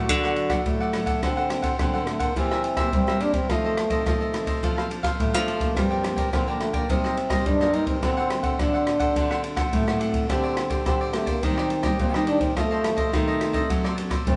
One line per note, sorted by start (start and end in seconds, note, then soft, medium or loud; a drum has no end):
0.00 0.89 F#4 medium
0.09 0.57 D3 medium
0.09 0.63 D3 soft
0.09 0.47 F#3 soft
0.09 0.48 A3 soft
0.09 0.22 D4 soft
0.09 0.48 D4 medium
0.09 0.22 A4 soft
0.09 0.23 D5 soft
0.09 0.23 F#5 soft
0.09 kick medium
0.09 ride soft
0.24 0.36 A4 soft
0.24 0.36 D5 medium
0.24 0.36 F#5 medium
0.24 cross-stick medium
0.36 muted cavaquinho stroke soft
0.36 ride soft
0.50 0.89 F#3 medium
0.50 0.89 A3 medium
0.50 0.89 D4 medium
0.50 0.79 A4 medium
0.50 0.78 D5 medium
0.50 0.78 F#5 medium
0.50 kick medium
0.50 cross-stick medium
0.50 ride soft
0.66 1.14 A2 medium
0.66 1.20 A2 soft
0.66 1.19 A3 medium
0.66 kick medium
0.66 ride soft
0.80 0.92 A4 medium
0.80 0.93 D5 medium
0.80 0.93 F#5 medium
0.93 1.20 F#3 soft
0.93 1.20 A3 medium
0.93 1.06 D4 soft
0.93 1.21 D4 medium
0.93 1.06 A4 soft
0.93 1.06 D5 soft
0.93 1.05 F#5 soft
0.93 cross-stick medium
0.93 ride soft
1.06 1.21 A4 medium
1.06 1.21 D5 medium
1.06 1.20 F#5 medium
1.06 kick medium
1.06 ride soft
1.22 1.71 D3 medium
1.22 1.77 D3 soft
1.22 1.47 A3 medium
1.22 1.76 C4 medium
1.22 1.47 C4 medium
1.22 1.35 D4 soft
1.22 1.47 F#4 medium
1.22 1.36 A4 soft
1.22 1.36 C5 soft
1.22 1.36 F#5 medium
1.22 kick medium
1.22 cross-stick medium
1.22 ride soft
1.37 1.49 A4 soft
1.37 1.49 C5 soft
1.37 1.49 F#5 medium
1.50 1.67 A3 medium
1.50 1.68 C4 medium
1.50 1.68 F#4 medium
1.50 muted cavaquinho stroke soft
1.50 cross-stick medium
1.50 ride soft
1.62 1.78 A4 soft
1.62 1.77 C5 medium
1.62 1.77 F#5 medium
1.62 kick medium
1.62 ride soft
1.79 2.33 A2 soft
1.79 2.28 D3 medium
1.79 1.89 A3 soft
1.79 1.89 C4 soft
1.79 2.09 C4 medium
1.79 1.92 D4 soft
1.79 1.89 F#4 soft
1.79 1.92 A4 soft
1.79 1.93 C5 soft
1.79 1.92 F#5 soft
1.79 kick medium
1.79 cross-stick medium
1.79 ride soft
1.94 2.32 A3 medium
1.94 2.32 C4 soft
1.94 2.32 F#4 medium
1.94 2.20 A4 soft
1.94 2.19 C5 soft
1.94 2.18 F#5 medium
2.07 2.22 A3 medium
2.07 cross-stick medium
2.07 ride soft
2.19 2.35 A#3 medium
2.19 2.34 A4 soft
2.19 2.34 C5 medium
2.19 2.34 F#5 medium
2.19 kick medium
2.19 ride soft
2.36 2.90 E3 medium
2.36 2.84 E3 medium
2.36 2.63 A#3 medium
2.36 2.63 C4 soft
2.36 2.90 C4 medium
2.36 2.49 E4 soft
2.36 2.63 G4 medium
2.36 2.49 A#4 soft
2.36 2.49 C5 soft
2.36 2.50 E5 soft
2.36 kick medium
2.36 ride soft
2.51 2.62 A#4 medium
2.51 2.63 C5 medium
2.51 2.63 E5 medium
2.51 cross-stick medium
2.63 muted cavaquinho stroke soft
2.63 ride soft
2.77 3.16 A#3 medium
2.77 3.16 C4 medium
2.77 3.16 G4 medium
2.77 3.06 A#4 medium
2.77 3.05 C5 medium
2.77 3.05 E5 medium
2.77 kick medium
2.77 cross-stick medium
2.77 ride soft
2.93 3.47 E3 medium
2.93 3.05 G3 medium
2.93 3.23 C4 medium
2.93 kick medium
2.93 ride soft
3.07 3.43 G3 medium
3.07 3.20 A#4 medium
3.07 3.20 C5 medium
3.07 3.20 E5 medium
3.07 cross-stick medium
3.20 3.39 A#3 medium
3.20 3.39 C4 medium
3.20 3.35 D4 medium
3.20 3.48 E4 soft
3.20 3.39 G4 medium
3.20 3.48 A#4 soft
3.20 3.49 C5 soft
3.20 3.49 E5 soft
3.20 ride soft
3.33 3.52 C4 medium
3.33 kick medium
3.33 ride soft
3.49 4.04 F2 medium
3.49 3.76 D#3 medium
3.49 3.98 F3 medium
3.49 4.07 A3 medium
3.49 3.77 A3 medium
3.49 3.77 C4 medium
3.49 3.63 F4 soft
3.49 3.63 A4 soft
3.49 3.63 C5 soft
3.49 3.63 D#5 medium
3.49 kick medium
3.49 cross-stick medium
3.49 ride soft
3.64 3.76 A4 medium
3.64 3.77 C5 medium
3.64 3.77 D#5 medium
3.77 muted cavaquinho stroke soft
3.77 cross-stick medium
3.77 ride soft
3.90 4.29 D#3 medium
3.90 4.29 A3 medium
3.90 4.30 C4 medium
3.90 4.05 A4 medium
3.90 4.04 C5 medium
3.90 4.04 D#5 medium
3.90 kick medium
3.90 ride soft
4.06 4.60 C3 soft
4.06 4.54 F3 medium
4.06 4.89 A3 medium
4.06 4.19 F4 soft
4.06 4.19 A4 soft
4.06 4.20 C5 soft
4.06 4.19 D#5 soft
4.06 kick medium
4.06 cross-stick medium
4.06 ride soft
4.20 4.47 A4 soft
4.20 4.46 C5 medium
4.20 4.45 D#5 medium
4.33 4.50 D#3 medium
4.33 4.51 A3 medium
4.33 4.51 C4 medium
4.33 cross-stick medium
4.33 ride soft
4.46 4.61 A4 soft
4.46 4.61 C5 medium
4.46 4.61 D#5 medium
4.46 kick medium
4.46 ride soft
4.62 5.11 F3 medium
4.62 5.17 F3 medium
4.62 4.87 C4 medium
4.62 4.76 D4 soft
4.62 4.87 D4 soft
4.62 4.76 A4 soft
4.62 4.87 A4 medium
4.62 4.76 C5 soft
4.62 4.76 F5 medium
4.62 kick medium
4.62 ride soft
4.77 4.89 A4 medium
4.77 4.90 C5 soft
4.77 4.90 F5 medium
4.77 cross-stick medium
4.90 5.17 C4 medium
4.90 5.17 D4 medium
4.90 5.18 A4 medium
4.90 muted cavaquinho stroke soft
4.90 ride soft
5.03 5.32 A4 medium
5.03 5.32 C5 medium
5.03 5.31 F5 medium
5.03 kick medium
5.03 cross-stick medium
5.03 ride soft
5.20 5.34 A2 medium
5.20 5.59 F3 soft
5.20 5.77 A3 medium
5.20 kick medium
5.20 ride soft
5.34 5.70 F3 medium
5.34 5.58 C4 medium
5.34 5.58 D4 medium
5.34 5.46 A4 soft
5.34 5.58 A4 medium
5.34 5.46 C5 medium
5.34 5.47 F5 medium
5.34 cross-stick medium
5.46 5.74 D4 soft
5.46 5.75 A4 soft
5.46 5.75 C5 soft
5.46 5.75 F5 soft
5.46 ride soft
5.60 6.02 F3 medium
5.60 6.03 A#3 medium
5.60 6.03 D4 medium
5.60 kick medium
5.60 ride soft
5.76 6.30 G2 medium
5.76 6.25 G3 medium
5.76 6.32 C4 medium
5.76 5.89 F4 soft
5.76 5.89 A#4 medium
5.76 5.90 D5 medium
5.76 5.89 G5 soft
5.76 kick medium
5.76 cross-stick medium
5.76 ride soft
5.90 6.03 A#4 soft
5.90 6.03 D5 soft
5.90 6.03 G5 medium
6.03 6.21 F3 medium
6.03 6.21 A#3 medium
6.03 6.21 D4 medium
6.03 muted cavaquinho stroke soft
6.03 cross-stick medium
6.03 ride soft
6.16 6.31 A#4 medium
6.16 6.31 D5 medium
6.16 6.31 G5 medium
6.16 kick medium
6.16 ride soft
6.33 6.87 D3 soft
6.33 6.81 D3 medium
6.33 6.41 F3 soft
6.33 6.42 A#3 soft
6.33 6.46 C4 medium
6.33 6.42 D4 soft
6.33 6.46 F4 soft
6.33 6.46 A#4 soft
6.33 6.46 D5 medium
6.33 6.46 G5 soft
6.33 kick medium
6.33 cross-stick medium
6.33 ride soft
6.47 6.85 F3 medium
6.47 6.86 A#3 medium
6.47 6.86 D4 medium
6.47 6.74 A#4 soft
6.47 6.73 D5 medium
6.47 6.72 G5 medium
6.60 6.76 A3 medium
6.60 cross-stick medium
6.60 ride soft
6.73 6.89 A#3 medium
6.73 6.88 A#4 medium
6.73 6.88 D5 medium
6.73 6.87 G5 medium
6.73 kick medium
6.73 ride soft
6.89 7.43 C3 soft
6.89 7.38 C3 medium
6.89 7.16 G3 medium
6.89 7.16 A#3 medium
6.89 7.48 C4 medium
6.89 7.03 D#4 soft
6.89 7.16 D#4 soft
6.89 7.03 A#4 medium
6.89 7.03 C5 medium
6.89 7.03 D#5 medium
6.89 kick medium
6.89 ride soft
7.04 7.16 A#4 medium
7.04 7.16 C5 soft
7.04 7.16 D#5 medium
7.04 cross-stick medium
7.17 muted cavaquinho stroke soft
7.17 ride soft
7.30 7.69 G3 medium
7.30 7.69 A#3 medium
7.30 7.69 D#4 medium
7.30 7.59 A#4 medium
7.30 7.59 C5 medium
7.30 7.58 D#5 medium
7.30 kick medium
7.30 cross-stick medium
7.30 ride soft
7.46 8.00 G2 medium
7.46 7.60 G3 medium
7.46 7.75 D4 medium
7.46 kick medium
7.46 ride soft
7.61 7.97 C3 medium
7.61 7.72 A#4 medium
7.61 7.73 C5 medium
7.61 7.73 D#5 medium
7.61 cross-stick medium
7.73 8.00 G3 medium
7.73 8.00 A#3 medium
7.73 8.01 D#4 soft
7.73 7.87 D#4 medium
7.73 8.00 D#4 medium
7.73 8.01 A#4 soft
7.73 8.02 C5 medium
7.73 8.02 D#5 soft
7.73 ride soft
7.87 8.01 C4 medium
7.87 kick medium
7.87 ride soft
8.02 8.57 D3 medium
8.02 8.51 D3 medium
8.02 8.19 A3 medium
8.02 8.20 C4 medium
8.02 8.62 C4 loud
8.02 8.16 D4 soft
8.02 8.20 F#4 medium
8.02 8.16 A4 soft
8.02 8.16 C5 soft
8.02 8.16 F#5 medium
8.02 kick medium
8.02 cross-stick medium
8.02 ride soft
8.17 8.29 A4 medium
8.17 8.29 C5 medium
8.17 8.29 F#5 medium
8.30 8.54 A3 medium
8.30 8.55 C4 medium
8.30 8.55 F#4 medium
8.30 muted cavaquinho stroke soft
8.30 cross-stick medium
8.30 ride soft
8.43 8.58 A4 soft
8.43 8.58 C5 medium
8.43 8.57 F#5 medium
8.43 kick medium
8.43 ride soft
8.59 9.14 A2 medium
8.59 9.08 D3 medium
8.59 9.12 A3 soft
8.59 9.12 C4 soft
8.59 8.73 D4 soft
8.59 9.46 D4 medium
8.59 9.12 F#4 medium
8.59 8.73 A4 soft
8.59 8.73 C5 soft
8.59 8.73 F#5 soft
8.59 kick medium
8.59 cross-stick medium
8.59 ride soft
8.74 9.00 A4 medium
8.74 8.99 C5 medium
8.74 8.98 F#5 medium
8.87 cross-stick medium
8.87 ride soft
8.99 9.15 A4 medium
8.99 9.14 C5 medium
8.99 9.14 F#5 medium
8.99 kick medium
8.99 ride soft
9.15 9.70 D3 soft
9.15 9.64 D3 medium
9.15 9.54 A3 medium
9.15 9.55 C4 soft
9.15 9.29 D4 soft
9.15 9.55 F#4 medium
9.15 9.29 A4 soft
9.15 9.30 C5 soft
9.15 9.29 F#5 medium
9.15 kick medium
9.15 ride soft
9.30 9.42 A4 soft
9.30 9.43 C5 medium
9.30 9.43 F#5 medium
9.30 cross-stick medium
9.43 muted cavaquinho stroke soft
9.43 ride soft
9.56 9.96 A3 medium
9.56 9.96 C4 medium
9.56 9.96 F#4 medium
9.56 9.86 A4 medium
9.56 9.85 C5 medium
9.56 9.85 F#5 medium
9.56 kick medium
9.56 cross-stick medium
9.56 ride soft
9.73 9.85 A2 medium
9.73 10.27 A2 medium
9.73 10.26 A3 medium
9.73 kick medium
9.73 ride soft
9.87 10.24 A2 medium
9.87 9.99 A4 soft
9.87 9.99 C5 medium
9.87 10.00 F#5 medium
9.87 cross-stick medium
9.99 10.27 A3 medium
9.99 10.27 C4 medium
9.99 10.28 D4 soft
9.99 10.27 F#4 medium
9.99 10.28 A4 soft
9.99 10.28 C5 soft
9.99 10.29 F#5 soft
9.99 ride soft
10.14 kick medium
10.14 ride soft
10.29 10.84 D3 medium
10.29 10.78 D3 medium
10.29 10.56 A3 medium
10.29 10.57 C4 medium
10.29 10.83 C4 medium
10.29 10.42 D4 soft
10.29 10.43 G4 soft
10.29 10.57 G4 medium
10.29 10.43 C5 soft
10.29 10.42 D5 medium
10.29 kick medium
10.29 cross-stick medium
10.29 ride soft
10.44 10.56 G4 soft
10.44 10.56 C5 medium
10.44 10.56 D5 medium
10.57 muted cavaquinho stroke soft
10.57 cross-stick medium
10.57 ride soft
10.70 11.09 A3 medium
10.70 11.10 C4 medium
10.70 11.10 G4 medium
10.70 10.85 G4 soft
10.70 10.84 C5 medium
10.70 10.84 D5 medium
10.70 kick medium
10.70 ride soft
10.86 11.40 A2 soft
10.86 11.35 D3 medium
10.86 11.16 C4 medium
10.86 10.99 D4 soft
10.86 10.99 G4 soft
10.86 11.00 C5 soft
10.86 11.00 D5 soft
10.86 kick medium
10.86 cross-stick medium
10.86 ride soft
11.01 11.27 G4 medium
11.01 11.26 C5 medium
11.01 11.25 D5 medium
11.13 11.38 A3 medium
11.13 11.30 A3 medium
11.13 11.38 C4 medium
11.13 11.38 G4 medium
11.13 cross-stick medium
11.13 ride soft
11.26 11.46 A#3 medium
11.26 11.42 G4 medium
11.26 11.41 C5 medium
11.26 11.41 D5 medium
11.26 kick medium
11.26 ride soft
11.43 11.97 D#3 medium
11.43 11.91 D#3 medium
11.43 11.70 G3 soft
11.43 11.70 A#3 soft
11.43 12.00 C4 medium
11.43 11.56 D4 soft
11.43 11.70 D4 medium
11.43 11.56 G4 medium
11.43 11.56 D5 medium
11.43 11.57 D#5 medium
11.43 kick medium
11.43 ride soft
11.58 11.69 G4 soft
11.58 11.70 D5 medium
11.58 11.69 D#5 soft
11.58 cross-stick medium
11.70 muted cavaquinho stroke soft
11.70 ride soft
11.83 12.09 G3 medium
11.83 12.09 A#3 medium
11.83 12.09 D4 medium
11.83 12.12 G4 medium
11.83 12.11 D5 medium
11.83 12.12 D#5 medium
11.83 kick medium
11.83 cross-stick medium
11.83 ride soft
11.99 12.14 A#2 medium
11.99 12.54 A#2 medium
11.99 12.27 C4 medium
11.99 kick medium
11.99 ride soft
12.14 12.50 D#3 medium
12.14 12.38 G3 medium
12.14 12.38 A#3 medium
12.14 12.39 D4 medium
12.14 12.26 G4 medium
12.14 12.27 D5 medium
12.14 12.27 D#5 medium
12.14 cross-stick medium
12.27 12.55 D4 soft
12.27 12.43 D4 medium
12.27 12.55 G4 soft
12.27 12.55 D5 medium
12.27 12.55 D#5 medium
12.27 ride soft
12.41 12.83 D#3 medium
12.41 12.83 A3 medium
12.41 12.56 C4 medium
12.41 12.84 C4 medium
12.41 kick medium
12.41 ride soft
12.56 13.11 F2 medium
12.56 13.05 F3 medium
12.56 13.10 A3 medium
12.56 12.69 F4 soft
12.56 12.70 A4 soft
12.56 12.70 C5 medium
12.56 12.70 D#5 medium
12.56 kick medium
12.56 cross-stick medium
12.56 ride soft
12.71 12.83 A4 medium
12.71 12.83 C5 medium
12.71 12.83 D#5 medium
12.84 13.01 D#3 medium
12.84 13.01 A3 medium
12.84 13.02 C4 medium
12.84 muted cavaquinho stroke soft
12.84 cross-stick medium
12.84 ride soft
12.97 13.12 A4 soft
12.97 13.11 C5 medium
12.97 13.11 D#5 medium
12.97 kick medium
12.97 ride soft
13.13 13.68 C3 soft
13.13 13.62 D#3 medium
13.13 13.52 D#3 soft
13.13 13.96 A3 medium
13.13 13.52 A3 soft
13.13 13.52 C4 soft
13.13 13.26 F4 soft
13.13 13.26 A4 medium
13.13 13.27 C5 medium
13.13 13.26 D#5 soft
13.13 kick medium
13.13 cross-stick medium
13.13 ride soft
13.28 13.54 A4 soft
13.28 13.53 C5 medium
13.28 13.52 D#5 medium
13.41 cross-stick medium
13.41 ride soft
13.53 13.93 C4 medium
13.53 13.93 D4 medium
13.53 13.68 A4 medium
13.53 13.94 A4 medium
13.53 13.68 C5 medium
13.53 13.68 D#5 medium
13.53 kick medium
13.53 ride soft
13.69 14.18 F#3 medium
13.69 14.24 F#3 medium
13.69 13.83 F#4 medium
13.69 13.83 A4 soft
13.69 13.83 C5 soft
13.69 13.83 D5 medium
13.69 kick medium
13.69 ride soft
13.84 13.96 A4 medium
13.84 13.96 C5 medium
13.84 13.96 D5 medium
13.84 cross-stick medium
13.97 14.15 C4 medium
13.97 14.15 D4 medium
13.97 14.15 A4 medium
13.97 muted cavaquinho stroke soft
13.97 ride soft
14.10 14.36 A4 medium
14.10 14.36 C5 medium
14.10 14.36 D5 medium
14.10 kick medium
14.10 cross-stick medium
14.10 ride soft
14.27 14.36 A2 medium
14.27 14.36 F#3 medium
14.27 14.36 C4 medium
14.27 14.36 C4 loud
14.27 14.36 D4 medium
14.27 14.36 A4 medium
14.27 kick medium
14.27 ride soft